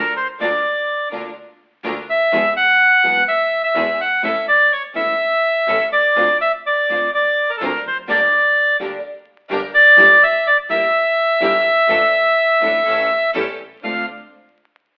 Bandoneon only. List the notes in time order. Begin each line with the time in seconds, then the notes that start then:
Already playing: A#4
0.16 C5
0.41 D5
2.10 E5
2.57 F#5
3.28 E5
3.64 E5
4.01 F#5
4.24 E5
4.48 D5
4.72 C#5
4.96 E5
5.92 D5
6.41 E5
6.66 D5
7.14 D5
7.50 A#4
7.57 A4
7.64 A#4
7.87 C5
8.10 D5
9.74 D5
10.23 E5
10.47 D5
10.70 E5
13.84 F5